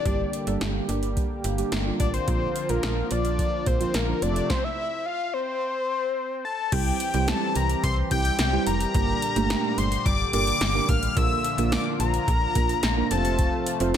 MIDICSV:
0, 0, Header, 1, 6, 480
1, 0, Start_track
1, 0, Tempo, 555556
1, 48, Time_signature, 4, 2, 24, 8
1, 12071, End_track
2, 0, Start_track
2, 0, Title_t, "Analog synth lead"
2, 0, Program_c, 0, 81
2, 0, Note_on_c, 0, 74, 98
2, 496, Note_off_c, 0, 74, 0
2, 1727, Note_on_c, 0, 74, 86
2, 1839, Note_off_c, 0, 74, 0
2, 1847, Note_on_c, 0, 72, 97
2, 2330, Note_on_c, 0, 70, 92
2, 2343, Note_off_c, 0, 72, 0
2, 2690, Note_on_c, 0, 74, 97
2, 2703, Note_off_c, 0, 70, 0
2, 3169, Note_on_c, 0, 72, 90
2, 3182, Note_off_c, 0, 74, 0
2, 3409, Note_on_c, 0, 70, 87
2, 3422, Note_off_c, 0, 72, 0
2, 3648, Note_on_c, 0, 74, 98
2, 3661, Note_off_c, 0, 70, 0
2, 3888, Note_on_c, 0, 72, 102
2, 3901, Note_off_c, 0, 74, 0
2, 4009, Note_on_c, 0, 76, 111
2, 4022, Note_off_c, 0, 72, 0
2, 4368, Note_on_c, 0, 77, 107
2, 4381, Note_off_c, 0, 76, 0
2, 4608, Note_on_c, 0, 72, 101
2, 4621, Note_off_c, 0, 77, 0
2, 5566, Note_off_c, 0, 72, 0
2, 5571, Note_on_c, 0, 81, 84
2, 5811, Note_on_c, 0, 79, 96
2, 5824, Note_off_c, 0, 81, 0
2, 6291, Note_on_c, 0, 81, 92
2, 6304, Note_off_c, 0, 79, 0
2, 6530, Note_on_c, 0, 82, 88
2, 6543, Note_off_c, 0, 81, 0
2, 6766, Note_off_c, 0, 82, 0
2, 6771, Note_on_c, 0, 84, 90
2, 6878, Note_off_c, 0, 84, 0
2, 7011, Note_on_c, 0, 79, 101
2, 7456, Note_off_c, 0, 79, 0
2, 7489, Note_on_c, 0, 82, 106
2, 8448, Note_on_c, 0, 84, 98
2, 8461, Note_off_c, 0, 82, 0
2, 8683, Note_off_c, 0, 84, 0
2, 8689, Note_on_c, 0, 86, 109
2, 8911, Note_off_c, 0, 86, 0
2, 8928, Note_on_c, 0, 86, 115
2, 9407, Note_on_c, 0, 89, 112
2, 9420, Note_off_c, 0, 86, 0
2, 9647, Note_on_c, 0, 88, 116
2, 9660, Note_off_c, 0, 89, 0
2, 10123, Note_off_c, 0, 88, 0
2, 10128, Note_on_c, 0, 86, 100
2, 10236, Note_off_c, 0, 86, 0
2, 10369, Note_on_c, 0, 82, 115
2, 11294, Note_off_c, 0, 82, 0
2, 11328, Note_on_c, 0, 81, 94
2, 12013, Note_off_c, 0, 81, 0
2, 12071, End_track
3, 0, Start_track
3, 0, Title_t, "Synth keys"
3, 0, Program_c, 1, 88
3, 48, Note_on_c, 1, 55, 72
3, 48, Note_on_c, 1, 67, 79
3, 49, Note_on_c, 1, 58, 67
3, 49, Note_on_c, 1, 62, 69
3, 238, Note_off_c, 1, 55, 0
3, 238, Note_off_c, 1, 58, 0
3, 238, Note_off_c, 1, 62, 0
3, 238, Note_off_c, 1, 67, 0
3, 406, Note_on_c, 1, 55, 87
3, 406, Note_on_c, 1, 58, 79
3, 407, Note_on_c, 1, 62, 81
3, 407, Note_on_c, 1, 69, 98
3, 597, Note_off_c, 1, 55, 0
3, 597, Note_off_c, 1, 58, 0
3, 597, Note_off_c, 1, 62, 0
3, 597, Note_off_c, 1, 69, 0
3, 766, Note_on_c, 1, 58, 78
3, 766, Note_on_c, 1, 62, 81
3, 767, Note_on_c, 1, 55, 87
3, 767, Note_on_c, 1, 67, 94
3, 1084, Note_off_c, 1, 55, 0
3, 1084, Note_off_c, 1, 58, 0
3, 1084, Note_off_c, 1, 62, 0
3, 1084, Note_off_c, 1, 67, 0
3, 1366, Note_on_c, 1, 58, 80
3, 1366, Note_on_c, 1, 62, 75
3, 1366, Note_on_c, 1, 67, 93
3, 1367, Note_on_c, 1, 55, 86
3, 1494, Note_off_c, 1, 55, 0
3, 1494, Note_off_c, 1, 58, 0
3, 1494, Note_off_c, 1, 62, 0
3, 1494, Note_off_c, 1, 67, 0
3, 1607, Note_on_c, 1, 55, 72
3, 1607, Note_on_c, 1, 62, 67
3, 1608, Note_on_c, 1, 58, 68
3, 1608, Note_on_c, 1, 65, 82
3, 1797, Note_off_c, 1, 62, 0
3, 1798, Note_off_c, 1, 55, 0
3, 1798, Note_off_c, 1, 58, 0
3, 1798, Note_off_c, 1, 65, 0
3, 1967, Note_on_c, 1, 58, 68
3, 1967, Note_on_c, 1, 62, 68
3, 1968, Note_on_c, 1, 53, 74
3, 1968, Note_on_c, 1, 65, 81
3, 2157, Note_off_c, 1, 58, 0
3, 2157, Note_off_c, 1, 62, 0
3, 2158, Note_off_c, 1, 53, 0
3, 2158, Note_off_c, 1, 65, 0
3, 2327, Note_on_c, 1, 53, 74
3, 2327, Note_on_c, 1, 65, 82
3, 2328, Note_on_c, 1, 58, 68
3, 2328, Note_on_c, 1, 62, 67
3, 2517, Note_off_c, 1, 65, 0
3, 2518, Note_off_c, 1, 53, 0
3, 2518, Note_off_c, 1, 58, 0
3, 2518, Note_off_c, 1, 62, 0
3, 2687, Note_on_c, 1, 62, 64
3, 2687, Note_on_c, 1, 65, 77
3, 2688, Note_on_c, 1, 53, 74
3, 2688, Note_on_c, 1, 58, 67
3, 3004, Note_off_c, 1, 53, 0
3, 3004, Note_off_c, 1, 58, 0
3, 3004, Note_off_c, 1, 62, 0
3, 3004, Note_off_c, 1, 65, 0
3, 3285, Note_on_c, 1, 58, 66
3, 3285, Note_on_c, 1, 65, 83
3, 3286, Note_on_c, 1, 53, 71
3, 3286, Note_on_c, 1, 62, 66
3, 3413, Note_off_c, 1, 53, 0
3, 3413, Note_off_c, 1, 58, 0
3, 3413, Note_off_c, 1, 62, 0
3, 3413, Note_off_c, 1, 65, 0
3, 3525, Note_on_c, 1, 53, 74
3, 3526, Note_on_c, 1, 58, 67
3, 3526, Note_on_c, 1, 62, 69
3, 3526, Note_on_c, 1, 65, 81
3, 3634, Note_off_c, 1, 53, 0
3, 3634, Note_off_c, 1, 65, 0
3, 3644, Note_on_c, 1, 53, 79
3, 3644, Note_on_c, 1, 57, 72
3, 3644, Note_on_c, 1, 65, 87
3, 3645, Note_on_c, 1, 60, 73
3, 3647, Note_off_c, 1, 58, 0
3, 3647, Note_off_c, 1, 62, 0
3, 3838, Note_off_c, 1, 53, 0
3, 3838, Note_off_c, 1, 57, 0
3, 3838, Note_off_c, 1, 60, 0
3, 3838, Note_off_c, 1, 65, 0
3, 5809, Note_on_c, 1, 55, 77
3, 5809, Note_on_c, 1, 60, 70
3, 5809, Note_on_c, 1, 64, 67
3, 5809, Note_on_c, 1, 67, 84
3, 5998, Note_off_c, 1, 55, 0
3, 5998, Note_off_c, 1, 60, 0
3, 5998, Note_off_c, 1, 64, 0
3, 5998, Note_off_c, 1, 67, 0
3, 6168, Note_on_c, 1, 55, 80
3, 6168, Note_on_c, 1, 64, 70
3, 6168, Note_on_c, 1, 67, 85
3, 6169, Note_on_c, 1, 60, 72
3, 6611, Note_off_c, 1, 55, 0
3, 6611, Note_off_c, 1, 60, 0
3, 6611, Note_off_c, 1, 64, 0
3, 6611, Note_off_c, 1, 67, 0
3, 7008, Note_on_c, 1, 55, 72
3, 7009, Note_on_c, 1, 60, 68
3, 7009, Note_on_c, 1, 64, 68
3, 7009, Note_on_c, 1, 67, 84
3, 7198, Note_off_c, 1, 55, 0
3, 7198, Note_off_c, 1, 60, 0
3, 7198, Note_off_c, 1, 64, 0
3, 7198, Note_off_c, 1, 67, 0
3, 7367, Note_on_c, 1, 55, 77
3, 7368, Note_on_c, 1, 60, 71
3, 7368, Note_on_c, 1, 64, 69
3, 7368, Note_on_c, 1, 67, 84
3, 7557, Note_off_c, 1, 55, 0
3, 7558, Note_off_c, 1, 60, 0
3, 7558, Note_off_c, 1, 64, 0
3, 7558, Note_off_c, 1, 67, 0
3, 7728, Note_on_c, 1, 58, 78
3, 7729, Note_on_c, 1, 62, 73
3, 7729, Note_on_c, 1, 67, 72
3, 7729, Note_on_c, 1, 70, 84
3, 7918, Note_off_c, 1, 58, 0
3, 7918, Note_off_c, 1, 62, 0
3, 7918, Note_off_c, 1, 67, 0
3, 7918, Note_off_c, 1, 70, 0
3, 8088, Note_on_c, 1, 57, 102
3, 8088, Note_on_c, 1, 58, 96
3, 8088, Note_on_c, 1, 62, 87
3, 8088, Note_on_c, 1, 67, 84
3, 8531, Note_off_c, 1, 57, 0
3, 8531, Note_off_c, 1, 58, 0
3, 8531, Note_off_c, 1, 62, 0
3, 8531, Note_off_c, 1, 67, 0
3, 8925, Note_on_c, 1, 58, 75
3, 8925, Note_on_c, 1, 62, 66
3, 8925, Note_on_c, 1, 70, 82
3, 8926, Note_on_c, 1, 67, 69
3, 9116, Note_off_c, 1, 58, 0
3, 9116, Note_off_c, 1, 62, 0
3, 9117, Note_off_c, 1, 67, 0
3, 9117, Note_off_c, 1, 70, 0
3, 9286, Note_on_c, 1, 58, 77
3, 9286, Note_on_c, 1, 62, 69
3, 9286, Note_on_c, 1, 70, 84
3, 9287, Note_on_c, 1, 67, 73
3, 9477, Note_off_c, 1, 58, 0
3, 9477, Note_off_c, 1, 62, 0
3, 9477, Note_off_c, 1, 67, 0
3, 9477, Note_off_c, 1, 70, 0
3, 9646, Note_on_c, 1, 58, 79
3, 9646, Note_on_c, 1, 62, 70
3, 9646, Note_on_c, 1, 65, 71
3, 9646, Note_on_c, 1, 70, 82
3, 9837, Note_off_c, 1, 58, 0
3, 9837, Note_off_c, 1, 62, 0
3, 9837, Note_off_c, 1, 65, 0
3, 9837, Note_off_c, 1, 70, 0
3, 10008, Note_on_c, 1, 58, 79
3, 10008, Note_on_c, 1, 62, 72
3, 10009, Note_on_c, 1, 65, 72
3, 10009, Note_on_c, 1, 70, 88
3, 10451, Note_off_c, 1, 58, 0
3, 10451, Note_off_c, 1, 62, 0
3, 10451, Note_off_c, 1, 65, 0
3, 10451, Note_off_c, 1, 70, 0
3, 10848, Note_on_c, 1, 58, 74
3, 10848, Note_on_c, 1, 65, 69
3, 10848, Note_on_c, 1, 70, 82
3, 10849, Note_on_c, 1, 62, 69
3, 11038, Note_off_c, 1, 58, 0
3, 11038, Note_off_c, 1, 62, 0
3, 11038, Note_off_c, 1, 65, 0
3, 11038, Note_off_c, 1, 70, 0
3, 11207, Note_on_c, 1, 58, 81
3, 11207, Note_on_c, 1, 62, 71
3, 11207, Note_on_c, 1, 65, 71
3, 11207, Note_on_c, 1, 70, 87
3, 11318, Note_off_c, 1, 65, 0
3, 11327, Note_off_c, 1, 62, 0
3, 11327, Note_off_c, 1, 70, 0
3, 11327, Note_on_c, 1, 60, 82
3, 11327, Note_on_c, 1, 69, 77
3, 11327, Note_on_c, 1, 72, 89
3, 11328, Note_off_c, 1, 58, 0
3, 11328, Note_on_c, 1, 65, 77
3, 11807, Note_off_c, 1, 72, 0
3, 11808, Note_off_c, 1, 60, 0
3, 11808, Note_off_c, 1, 65, 0
3, 11808, Note_off_c, 1, 69, 0
3, 11928, Note_on_c, 1, 60, 94
3, 11928, Note_on_c, 1, 65, 85
3, 11928, Note_on_c, 1, 72, 104
3, 11929, Note_on_c, 1, 69, 88
3, 12071, Note_off_c, 1, 60, 0
3, 12071, Note_off_c, 1, 65, 0
3, 12071, Note_off_c, 1, 69, 0
3, 12071, Note_off_c, 1, 72, 0
3, 12071, End_track
4, 0, Start_track
4, 0, Title_t, "Analog synth pad"
4, 0, Program_c, 2, 89
4, 46, Note_on_c, 2, 58, 71
4, 47, Note_on_c, 2, 50, 80
4, 47, Note_on_c, 2, 55, 72
4, 48, Note_on_c, 2, 67, 85
4, 1948, Note_off_c, 2, 55, 0
4, 1949, Note_off_c, 2, 67, 0
4, 1966, Note_on_c, 2, 53, 71
4, 1967, Note_on_c, 2, 65, 88
4, 3613, Note_off_c, 2, 50, 0
4, 3613, Note_off_c, 2, 58, 0
4, 3650, Note_on_c, 2, 48, 72
4, 3651, Note_on_c, 2, 57, 63
4, 3868, Note_off_c, 2, 53, 0
4, 3868, Note_off_c, 2, 65, 0
4, 3886, Note_off_c, 2, 48, 0
4, 3887, Note_off_c, 2, 57, 0
4, 5808, Note_on_c, 2, 60, 73
4, 5808, Note_on_c, 2, 67, 90
4, 5809, Note_on_c, 2, 55, 74
4, 5810, Note_on_c, 2, 52, 80
4, 7709, Note_off_c, 2, 60, 0
4, 7710, Note_off_c, 2, 52, 0
4, 7726, Note_on_c, 2, 50, 82
4, 7727, Note_on_c, 2, 46, 72
4, 9613, Note_off_c, 2, 67, 0
4, 9614, Note_off_c, 2, 55, 0
4, 9646, Note_on_c, 2, 65, 88
4, 9648, Note_on_c, 2, 53, 74
4, 11292, Note_off_c, 2, 50, 0
4, 11293, Note_off_c, 2, 46, 0
4, 11310, Note_off_c, 2, 65, 0
4, 11311, Note_off_c, 2, 53, 0
4, 11326, Note_on_c, 2, 48, 78
4, 11326, Note_on_c, 2, 53, 74
4, 11327, Note_on_c, 2, 57, 75
4, 11328, Note_on_c, 2, 65, 89
4, 12071, Note_off_c, 2, 48, 0
4, 12071, Note_off_c, 2, 53, 0
4, 12071, Note_off_c, 2, 57, 0
4, 12071, Note_off_c, 2, 65, 0
4, 12071, End_track
5, 0, Start_track
5, 0, Title_t, "FM bass"
5, 0, Program_c, 3, 39
5, 46, Note_on_c, 3, 31, 105
5, 215, Note_off_c, 3, 31, 0
5, 407, Note_on_c, 3, 31, 98
5, 491, Note_off_c, 3, 31, 0
5, 529, Note_on_c, 3, 31, 107
5, 697, Note_off_c, 3, 31, 0
5, 766, Note_on_c, 3, 31, 97
5, 1019, Note_off_c, 3, 31, 0
5, 1246, Note_on_c, 3, 31, 95
5, 1415, Note_off_c, 3, 31, 0
5, 1486, Note_on_c, 3, 31, 101
5, 1655, Note_off_c, 3, 31, 0
5, 1727, Note_on_c, 3, 33, 89
5, 1895, Note_off_c, 3, 33, 0
5, 1967, Note_on_c, 3, 34, 109
5, 2136, Note_off_c, 3, 34, 0
5, 2328, Note_on_c, 3, 34, 94
5, 2412, Note_off_c, 3, 34, 0
5, 2447, Note_on_c, 3, 34, 110
5, 2615, Note_off_c, 3, 34, 0
5, 2688, Note_on_c, 3, 34, 94
5, 2940, Note_off_c, 3, 34, 0
5, 3167, Note_on_c, 3, 34, 95
5, 3336, Note_off_c, 3, 34, 0
5, 3407, Note_on_c, 3, 34, 96
5, 3575, Note_off_c, 3, 34, 0
5, 3646, Note_on_c, 3, 29, 94
5, 3815, Note_off_c, 3, 29, 0
5, 5808, Note_on_c, 3, 36, 112
5, 5976, Note_off_c, 3, 36, 0
5, 6168, Note_on_c, 3, 36, 94
5, 6336, Note_off_c, 3, 36, 0
5, 6529, Note_on_c, 3, 36, 97
5, 6697, Note_off_c, 3, 36, 0
5, 6769, Note_on_c, 3, 36, 107
5, 6937, Note_off_c, 3, 36, 0
5, 7008, Note_on_c, 3, 36, 105
5, 7176, Note_off_c, 3, 36, 0
5, 7249, Note_on_c, 3, 36, 102
5, 7417, Note_off_c, 3, 36, 0
5, 7490, Note_on_c, 3, 29, 87
5, 7657, Note_off_c, 3, 29, 0
5, 7729, Note_on_c, 3, 31, 110
5, 7896, Note_off_c, 3, 31, 0
5, 8089, Note_on_c, 3, 31, 98
5, 8256, Note_off_c, 3, 31, 0
5, 8446, Note_on_c, 3, 31, 96
5, 8615, Note_off_c, 3, 31, 0
5, 8688, Note_on_c, 3, 31, 103
5, 8856, Note_off_c, 3, 31, 0
5, 8927, Note_on_c, 3, 31, 96
5, 9095, Note_off_c, 3, 31, 0
5, 9167, Note_on_c, 3, 31, 105
5, 9335, Note_off_c, 3, 31, 0
5, 9406, Note_on_c, 3, 33, 92
5, 9574, Note_off_c, 3, 33, 0
5, 9647, Note_on_c, 3, 34, 115
5, 9815, Note_off_c, 3, 34, 0
5, 10005, Note_on_c, 3, 34, 101
5, 10174, Note_off_c, 3, 34, 0
5, 10365, Note_on_c, 3, 34, 91
5, 10534, Note_off_c, 3, 34, 0
5, 10607, Note_on_c, 3, 34, 104
5, 10775, Note_off_c, 3, 34, 0
5, 10847, Note_on_c, 3, 34, 93
5, 11015, Note_off_c, 3, 34, 0
5, 11086, Note_on_c, 3, 34, 101
5, 11254, Note_off_c, 3, 34, 0
5, 11327, Note_on_c, 3, 29, 104
5, 11663, Note_off_c, 3, 29, 0
5, 11926, Note_on_c, 3, 29, 96
5, 12071, Note_off_c, 3, 29, 0
5, 12071, End_track
6, 0, Start_track
6, 0, Title_t, "Drums"
6, 47, Note_on_c, 9, 36, 114
6, 48, Note_on_c, 9, 42, 73
6, 133, Note_off_c, 9, 36, 0
6, 134, Note_off_c, 9, 42, 0
6, 288, Note_on_c, 9, 42, 74
6, 375, Note_off_c, 9, 42, 0
6, 407, Note_on_c, 9, 42, 57
6, 493, Note_off_c, 9, 42, 0
6, 528, Note_on_c, 9, 42, 65
6, 529, Note_on_c, 9, 38, 115
6, 614, Note_off_c, 9, 42, 0
6, 615, Note_off_c, 9, 38, 0
6, 767, Note_on_c, 9, 42, 76
6, 854, Note_off_c, 9, 42, 0
6, 887, Note_on_c, 9, 42, 50
6, 974, Note_off_c, 9, 42, 0
6, 1007, Note_on_c, 9, 36, 87
6, 1009, Note_on_c, 9, 42, 62
6, 1094, Note_off_c, 9, 36, 0
6, 1096, Note_off_c, 9, 42, 0
6, 1246, Note_on_c, 9, 42, 69
6, 1333, Note_off_c, 9, 42, 0
6, 1368, Note_on_c, 9, 42, 52
6, 1454, Note_off_c, 9, 42, 0
6, 1486, Note_on_c, 9, 42, 81
6, 1488, Note_on_c, 9, 38, 114
6, 1572, Note_off_c, 9, 42, 0
6, 1574, Note_off_c, 9, 38, 0
6, 1726, Note_on_c, 9, 36, 92
6, 1726, Note_on_c, 9, 42, 71
6, 1813, Note_off_c, 9, 36, 0
6, 1813, Note_off_c, 9, 42, 0
6, 1847, Note_on_c, 9, 42, 53
6, 1934, Note_off_c, 9, 42, 0
6, 1967, Note_on_c, 9, 36, 116
6, 1967, Note_on_c, 9, 42, 76
6, 2053, Note_off_c, 9, 36, 0
6, 2054, Note_off_c, 9, 42, 0
6, 2209, Note_on_c, 9, 42, 74
6, 2295, Note_off_c, 9, 42, 0
6, 2326, Note_on_c, 9, 42, 56
6, 2412, Note_off_c, 9, 42, 0
6, 2446, Note_on_c, 9, 42, 66
6, 2447, Note_on_c, 9, 38, 115
6, 2532, Note_off_c, 9, 42, 0
6, 2533, Note_off_c, 9, 38, 0
6, 2684, Note_on_c, 9, 42, 76
6, 2771, Note_off_c, 9, 42, 0
6, 2805, Note_on_c, 9, 42, 51
6, 2892, Note_off_c, 9, 42, 0
6, 2927, Note_on_c, 9, 36, 89
6, 2929, Note_on_c, 9, 42, 63
6, 3013, Note_off_c, 9, 36, 0
6, 3015, Note_off_c, 9, 42, 0
6, 3166, Note_on_c, 9, 42, 72
6, 3167, Note_on_c, 9, 36, 92
6, 3253, Note_off_c, 9, 42, 0
6, 3254, Note_off_c, 9, 36, 0
6, 3289, Note_on_c, 9, 42, 55
6, 3375, Note_off_c, 9, 42, 0
6, 3406, Note_on_c, 9, 42, 84
6, 3408, Note_on_c, 9, 38, 115
6, 3492, Note_off_c, 9, 42, 0
6, 3494, Note_off_c, 9, 38, 0
6, 3648, Note_on_c, 9, 42, 72
6, 3734, Note_off_c, 9, 42, 0
6, 3768, Note_on_c, 9, 42, 52
6, 3854, Note_off_c, 9, 42, 0
6, 3887, Note_on_c, 9, 36, 104
6, 3887, Note_on_c, 9, 38, 89
6, 3973, Note_off_c, 9, 38, 0
6, 3974, Note_off_c, 9, 36, 0
6, 5808, Note_on_c, 9, 36, 117
6, 5808, Note_on_c, 9, 42, 77
6, 5808, Note_on_c, 9, 49, 100
6, 5894, Note_off_c, 9, 36, 0
6, 5895, Note_off_c, 9, 42, 0
6, 5895, Note_off_c, 9, 49, 0
6, 6049, Note_on_c, 9, 42, 76
6, 6135, Note_off_c, 9, 42, 0
6, 6167, Note_on_c, 9, 42, 57
6, 6254, Note_off_c, 9, 42, 0
6, 6288, Note_on_c, 9, 42, 70
6, 6289, Note_on_c, 9, 38, 120
6, 6375, Note_off_c, 9, 42, 0
6, 6376, Note_off_c, 9, 38, 0
6, 6527, Note_on_c, 9, 42, 82
6, 6614, Note_off_c, 9, 42, 0
6, 6648, Note_on_c, 9, 42, 53
6, 6735, Note_off_c, 9, 42, 0
6, 6769, Note_on_c, 9, 36, 92
6, 6770, Note_on_c, 9, 42, 68
6, 6855, Note_off_c, 9, 36, 0
6, 6857, Note_off_c, 9, 42, 0
6, 7007, Note_on_c, 9, 42, 75
6, 7008, Note_on_c, 9, 36, 98
6, 7094, Note_off_c, 9, 42, 0
6, 7095, Note_off_c, 9, 36, 0
6, 7127, Note_on_c, 9, 42, 59
6, 7214, Note_off_c, 9, 42, 0
6, 7246, Note_on_c, 9, 42, 89
6, 7248, Note_on_c, 9, 38, 120
6, 7333, Note_off_c, 9, 42, 0
6, 7334, Note_off_c, 9, 38, 0
6, 7487, Note_on_c, 9, 42, 77
6, 7574, Note_off_c, 9, 42, 0
6, 7607, Note_on_c, 9, 42, 55
6, 7694, Note_off_c, 9, 42, 0
6, 7728, Note_on_c, 9, 36, 116
6, 7728, Note_on_c, 9, 42, 79
6, 7814, Note_off_c, 9, 36, 0
6, 7815, Note_off_c, 9, 42, 0
6, 7969, Note_on_c, 9, 42, 76
6, 8055, Note_off_c, 9, 42, 0
6, 8089, Note_on_c, 9, 42, 58
6, 8175, Note_off_c, 9, 42, 0
6, 8210, Note_on_c, 9, 42, 72
6, 8211, Note_on_c, 9, 38, 118
6, 8296, Note_off_c, 9, 42, 0
6, 8297, Note_off_c, 9, 38, 0
6, 8449, Note_on_c, 9, 42, 81
6, 8536, Note_off_c, 9, 42, 0
6, 8569, Note_on_c, 9, 42, 54
6, 8655, Note_off_c, 9, 42, 0
6, 8688, Note_on_c, 9, 36, 91
6, 8691, Note_on_c, 9, 42, 68
6, 8775, Note_off_c, 9, 36, 0
6, 8778, Note_off_c, 9, 42, 0
6, 8928, Note_on_c, 9, 42, 76
6, 9014, Note_off_c, 9, 42, 0
6, 9048, Note_on_c, 9, 42, 57
6, 9134, Note_off_c, 9, 42, 0
6, 9166, Note_on_c, 9, 42, 85
6, 9168, Note_on_c, 9, 38, 119
6, 9253, Note_off_c, 9, 42, 0
6, 9255, Note_off_c, 9, 38, 0
6, 9406, Note_on_c, 9, 36, 94
6, 9407, Note_on_c, 9, 42, 76
6, 9493, Note_off_c, 9, 36, 0
6, 9493, Note_off_c, 9, 42, 0
6, 9527, Note_on_c, 9, 42, 56
6, 9614, Note_off_c, 9, 42, 0
6, 9647, Note_on_c, 9, 36, 123
6, 9648, Note_on_c, 9, 42, 82
6, 9733, Note_off_c, 9, 36, 0
6, 9735, Note_off_c, 9, 42, 0
6, 9888, Note_on_c, 9, 42, 75
6, 9975, Note_off_c, 9, 42, 0
6, 10007, Note_on_c, 9, 42, 59
6, 10093, Note_off_c, 9, 42, 0
6, 10127, Note_on_c, 9, 42, 68
6, 10128, Note_on_c, 9, 38, 123
6, 10213, Note_off_c, 9, 42, 0
6, 10214, Note_off_c, 9, 38, 0
6, 10367, Note_on_c, 9, 42, 83
6, 10453, Note_off_c, 9, 42, 0
6, 10487, Note_on_c, 9, 42, 54
6, 10573, Note_off_c, 9, 42, 0
6, 10607, Note_on_c, 9, 36, 94
6, 10609, Note_on_c, 9, 42, 66
6, 10694, Note_off_c, 9, 36, 0
6, 10696, Note_off_c, 9, 42, 0
6, 10846, Note_on_c, 9, 42, 76
6, 10847, Note_on_c, 9, 36, 95
6, 10933, Note_off_c, 9, 36, 0
6, 10933, Note_off_c, 9, 42, 0
6, 10967, Note_on_c, 9, 42, 57
6, 11053, Note_off_c, 9, 42, 0
6, 11084, Note_on_c, 9, 42, 84
6, 11086, Note_on_c, 9, 38, 124
6, 11170, Note_off_c, 9, 42, 0
6, 11172, Note_off_c, 9, 38, 0
6, 11326, Note_on_c, 9, 42, 77
6, 11412, Note_off_c, 9, 42, 0
6, 11446, Note_on_c, 9, 42, 56
6, 11532, Note_off_c, 9, 42, 0
6, 11566, Note_on_c, 9, 36, 121
6, 11566, Note_on_c, 9, 42, 77
6, 11652, Note_off_c, 9, 42, 0
6, 11653, Note_off_c, 9, 36, 0
6, 11806, Note_on_c, 9, 42, 76
6, 11893, Note_off_c, 9, 42, 0
6, 11925, Note_on_c, 9, 42, 61
6, 12011, Note_off_c, 9, 42, 0
6, 12071, End_track
0, 0, End_of_file